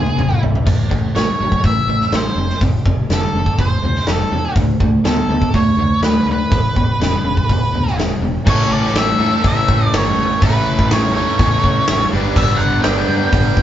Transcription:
Already playing: overdriven electric guitar E2 B2, lead electric guitar G#4
0.06 high tom
0.16 picked electric bass E1, overdriven electric guitar E2 B2, mid tom
0.30 mid tom
0.41 picked electric bass G#1, overdriven electric guitar E2 B2, floor tom
0.55 floor tom
0.66 picked electric bass A1, overdriven electric guitar A2 E3, kick, open hi-hat, crash
0.90 picked electric bass A1, overdriven electric guitar A2 E3, kick
1.15 picked electric bass A1, overdriven electric guitar A2 F#3, lead electric guitar C#5, snare, open hi-hat
1.40 picked electric bass A1, overdriven electric guitar A2 F#3
1.52 kick
1.64 picked electric bass A1, overdriven electric guitar A2 E3, lead electric guitar E5, kick, open hi-hat
1.87 picked electric bass A1, overdriven electric guitar A2 E3
2.01 snare
2.12 picked electric bass A1, overdriven electric guitar A2 E3, lead electric guitar C5, snare, open hi-hat
2.36 picked electric bass F1, overdriven electric guitar F2 C3
2.50 snare
2.61 picked electric bass F1, overdriven electric guitar F2 C3, kick, open hi-hat
2.86 picked electric bass F1, overdriven electric guitar F2 C3, kick
3.10 picked electric bass F1, overdriven electric guitar F2 D3, lead electric guitar A4, snare, open hi-hat
3.33 picked electric bass F1, overdriven electric guitar F2 D3
3.46 kick
3.59 picked electric bass F1, overdriven electric guitar F2 C3, lead electric guitar C5, kick, open hi-hat
3.82 picked electric bass D2, overdriven electric guitar F2 C3
3.95 snare
4.07 picked electric bass F1, overdriven electric guitar F2 C3, lead electric guitar A4, snare, open hi-hat
4.32 picked electric bass E2, overdriven electric guitar F2 C3
4.55 picked electric bass D2, overdriven electric guitar D3 A3, kick, open hi-hat
4.80 picked electric bass D2, overdriven electric guitar D3 A3, kick
5.04 picked electric bass D2, overdriven electric guitar D3 B3, lead electric guitar A4, snare, open hi-hat
5.28 picked electric bass D2, overdriven electric guitar D3 B3
5.42 kick
5.54 picked electric bass D2, overdriven electric guitar D3 A3, lead electric guitar C#5, kick, open hi-hat
5.77 picked electric bass D2, overdriven electric guitar D3 A3
6.01 picked electric bass D2, overdriven electric guitar D3 A3, lead electric guitar B4, snare, open hi-hat
6.26 picked electric bass D2, overdriven electric guitar D3 A3
6.32 lead electric guitar B4
6.51 picked electric bass E1, overdriven electric guitar E2 B2, kick, open hi-hat
6.76 picked electric bass E1, overdriven electric guitar E2 B2, kick
7.00 picked electric bass E1, overdriven electric guitar E2 C#3, snare, open hi-hat
7.25 picked electric bass E1, overdriven electric guitar E2 C#3
7.37 kick
7.49 picked electric bass E1, overdriven electric guitar E2 B2, kick, open hi-hat
7.73 picked electric bass D2, overdriven electric guitar E2 B2
7.87 snare
7.96 picked electric bass E1, overdriven electric guitar E2 B2, snare, open hi-hat
8.20 picked electric bass E1, overdriven electric guitar E2 B2
8.45 picked electric bass A1, overdriven electric guitar A2 E3 A3 C#4 E4 A4, lead electric guitar C#5, kick, crash
8.70 picked electric bass A1, lead electric guitar D5
8.85 snare
8.94 picked electric bass A1, lead electric guitar E5, snare, open hi-hat
9.18 picked electric bass A2, overdriven electric guitar A2 E3 A3 C#4 E4 A4
9.43 picked electric bass A1, overdriven electric guitar A2 E3 A3 C#4 E4, lead electric guitar E5, kick, open hi-hat
9.68 picked electric bass A1, kick
9.92 picked electric bass G1, lead electric guitar C#5, snare, open hi-hat
10.17 picked electric bass A1
10.40 picked electric bass A1, overdriven electric guitar A2 E3 A3 C#4 E4, kick, open hi-hat
10.44 overdriven electric guitar E4 A4, lead electric guitar B4
10.79 kick
10.91 picked electric bass A1, lead electric guitar C#5, snare, open hi-hat
11.15 overdriven electric guitar A2 E3 A3 C#4 E4 A4, lead electric guitar C#5
11.38 picked electric bass E2, overdriven electric guitar A2 E3 A3 C#4 E4, kick, open hi-hat
11.64 picked electric bass A1, kick
11.87 picked electric bass A1, snare, open hi-hat
12.11 picked electric bass G1, overdriven electric guitar G2 D3 G3 B3 D4 G4
12.16 overdriven electric guitar B4
12.36 picked electric bass G1, lead electric guitar E5, kick, crash
12.57 picked electric bass G1, lead electric guitar F#5
12.82 picked electric bass G1, overdriven electric guitar G2 D3 G3 B3 D4 G4, lead electric guitar G5, snare, open hi-hat
12.87 overdriven electric guitar B4
13.08 picked electric bass G2, overdriven electric guitar G2 D3 G3 B3 D4
13.30 picked electric bass G1, lead electric guitar G5, kick, open hi-hat
13.57 picked electric bass G1, kick

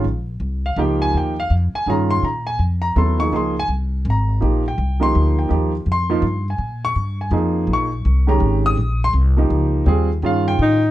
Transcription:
0.04 upright bass A#1
0.40 upright bass C2
0.66 grand piano F5
0.76 upright bass C#2, grand piano F3 A#3 D#4 G4 G5
1.02 grand piano G#5
1.14 upright bass D#2, grand piano G5
1.40 grand piano F5
1.50 upright bass F2
1.74 grand piano G#5, muted upright bass stroke
1.86 upright bass G2, grand piano D#3 C#4 F4 G#4 A#5
2.11 grand piano C6
2.23 upright bass A#2, grand piano A#5
2.47 grand piano G#5
2.59 upright bass F2
2.82 grand piano A#5
2.96 upright bass D#2, grand piano F#3 B3 E4 A4 C6
3.19 grand piano F3 A#3 D#4 G#4 C#6
3.32 upright bass C#2, grand piano F3 A#3 D#4 G#4 C6
3.59 grand piano G#5
3.68 upright bass C2
4.05 upright bass G#1
4.10 grand piano A#5
4.41 upright bass A#1, grand piano F3 A#3 D#4 G4
4.68 grand piano G5
4.78 upright bass C2
5.00 grand piano F3 A#3 D#4 G4 C6
5.15 upright bass D2
5.39 grand piano G5
5.49 upright bass D#2, grand piano F3 A#3 D#4 G4
5.86 upright bass F2
5.92 grand piano C6
6.10 grand piano F3 A#3 D#4 F4
6.22 upright bass G2
6.50 grand piano G#5
6.58 upright bass A#2
6.85 grand piano C#6
6.96 upright bass G2
7.21 grand piano G#5
7.31 upright bass F2, grand piano F3 A#3 D#4 G#4
7.67 upright bass A#1
7.73 grand piano C#6
8.05 upright bass C2
8.27 grand piano D#3 G#3 C#4 G4 A#5
8.40 upright bass G#1
8.66 grand piano D#6
8.77 upright bass A#1
9.04 grand piano C6
9.13 upright bass C2
9.37 grand piano F3 A#3 D#4 G4
9.50 upright bass C#2
9.86 upright bass D#2, grand piano G3 C4 F4 G#4
10.22 upright bass G2, grand piano D#3 C#4 F4 G#4 F5
10.48 grand piano G5
10.59 upright bass A2, alto saxophone D#4

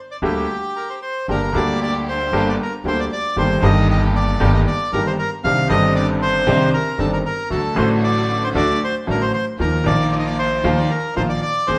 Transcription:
0.11 bandoneon D5
0.22 upright bass D2, grand piano D2 D3 G3 A#3 G4, bandoneon G4
0.76 bandoneon A#4
0.90 bandoneon C5
1.02 bandoneon C5
1.28 upright bass G1, grand piano G1 G2 D3 G3 A#3 G4, string section A#3 D4 G4, bandoneon A#4
1.53 grand piano D2 D3 G3 A#3, upright bass D2, string section A#3 D4 G4, bandoneon D5
1.57 grand piano G4
1.83 bandoneon D5
2.09 bandoneon C5
2.32 upright bass G1, grand piano G1 G2 D3 G3 A#3 G4, string section A#3 D4 G4
2.49 bandoneon D5
2.63 bandoneon A#4
2.84 upright bass D2, grand piano D2 D3 G3 A#3 G4, string section A#3 D4 G4, bandoneon C5
3.00 bandoneon D5
3.12 bandoneon D5
3.36 upright bass G1, grand piano G1 G2 D#3 G3 A#3 G4, string section A#3 D#4 G4, bandoneon C5
3.61 upright bass G1, grand piano G1 G2 D#3 G3 A#3, string section A#3 D#4 G4, bandoneon D#5
3.65 grand piano G4
3.90 bandoneon D#5
4.16 bandoneon D5
4.40 grand piano G1 G2 D#3 G3 A#3 G4, upright bass G1, string section A#3 D#4 G4
4.54 bandoneon D#5
4.67 bandoneon D5
4.92 upright bass G1, grand piano G1 G2 D#3 G3 A#3 G4, string section A#3 D#4 G4, bandoneon A#4
5.07 bandoneon C5
5.19 bandoneon A#4
5.44 upright bass C2, grand piano C2 C3 D#3 C4 D4 G4, string section C4 D4 D#4, bandoneon F5
5.68 grand piano G1 G2 D#3 C4 D4, upright bass G1, string section C4 D4, bandoneon D#5
5.72 grand piano G4
5.95 bandoneon D5
6.22 bandoneon C5
6.46 grand piano C2 C3 D#3 C4 D4 G4, upright bass C2, string section C4 D4 D#4
6.74 bandoneon A#4
6.98 upright bass G1, grand piano G1 G2 D#3 C4 D4 G4, string section C4 D4 D#4, bandoneon A4
7.13 bandoneon A#4
7.26 bandoneon A#4
7.50 upright bass D2, grand piano D2 D3 F#3 A3 F#4, string section A3 D4 F#4, bandoneon A4
7.74 grand piano A1 A2 D3 F#3 A3 F#4, upright bass A1, string section A3 D4 F#4, bandoneon C5
8.04 bandoneon D5
8.44 bandoneon C5
8.54 upright bass D2, grand piano D2 D3 F#3 A3 F#4, string section A3 D4 F#4, bandoneon D5
8.84 bandoneon C5
9.06 grand piano A1 A2 D3 F#3 A3 F#4, upright bass A1, string section A3 D4 F#4
9.10 bandoneon A#4
9.22 bandoneon C5
9.34 bandoneon C5
9.58 upright bass D#2, grand piano D#2 D#3 F3 A#3 F4, string section A#3 D#4 F4, bandoneon A#4
9.84 grand piano A#1 A#2 D#3 F3 A#3, upright bass A#1, string section A#3 D#4 F4, bandoneon D5
9.88 grand piano F4
10.12 bandoneon D5
10.19 bandoneon D#5
10.26 bandoneon D5
10.39 bandoneon C5
10.64 upright bass D#2, grand piano D#2 D#3 F3 A#3 F4, string section A#3 D#4 F4
10.77 bandoneon D5
10.90 bandoneon A#4
11.16 grand piano A#1 A#2 D#3 F3 A#3 F4, upright bass A#1, string section A#3 D#4 F4, bandoneon C5
11.29 bandoneon D5
11.42 bandoneon D5
11.67 grand piano D#2 D#3 G#3 C4 G#4, upright bass D#2, string section C4 D#4 G#4, bandoneon C5

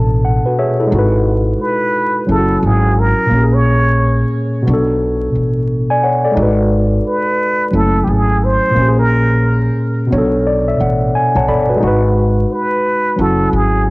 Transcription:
Already playing: upright bass A1, tine electric piano B2 B3 D4 A4 A5
0.25 tine electric piano F#5
0.46 tine electric piano F#4 B4
0.59 tine electric piano G#4 C#5 E5
0.80 tine electric piano E4 A4
0.87 tine electric piano G#3 D#4
0.92 upright bass G#1, tine electric piano F#4
0.98 tine electric piano B4
1.62 muted trumpet B4
2.26 upright bass F#1, tine electric piano F#3 C#4 E4
2.31 tine electric piano G#4, muted trumpet A4
2.38 tine electric piano F#4
2.62 upright bass G#1, muted trumpet G#4
2.99 muted trumpet A#4
3.26 tine electric piano A#2 A#3
3.31 upright bass A#1, tine electric piano C#4
3.37 tine electric piano G4
3.43 tine electric piano G#4
3.53 muted trumpet C#5
4.62 tine electric piano B2 B3
4.67 upright bass B1, tine electric piano D4
4.73 tine electric piano A4
5.35 upright bass A1
5.90 tine electric piano D5 G#5
6.04 tine electric piano C#5 F#5
6.25 tine electric piano A4 D5
6.32 tine electric piano G#3 D#4
6.37 upright bass G#1, tine electric piano F#4
6.43 tine electric piano B4
7.08 muted trumpet B4
7.71 upright bass F#1, tine electric piano F#3 C#4 E4
7.75 tine electric piano A3, muted trumpet A4
8.04 upright bass G#1, muted trumpet G4
8.10 muted trumpet G#4
8.44 muted trumpet C5
8.71 tine electric piano A#2
8.75 upright bass A#1, tine electric piano A#3 C#4
8.82 tine electric piano G4
8.88 tine electric piano G#4
8.99 muted trumpet A#4
10.07 tine electric piano B2 B3
10.12 upright bass B1, tine electric piano D4 C#5
10.18 tine electric piano A4
10.47 tine electric piano D5
10.68 tine electric piano E5
10.80 upright bass A1, tine electric piano F#5
11.15 tine electric piano G#5
11.36 upright bass B1, tine electric piano C#5 F#5 A5
11.48 upright bass G1, tine electric piano A4 D5 B5
11.69 tine electric piano F#4 B4
11.77 tine electric piano G#3 D#4
11.83 upright bass G#1, tine electric piano F#4
11.88 tine electric piano B4
12.53 muted trumpet B4
13.16 upright bass F#1, tine electric piano F#3 C#4 E4
13.21 tine electric piano F#4, muted trumpet A4
13.53 upright bass G#1, muted trumpet G#4

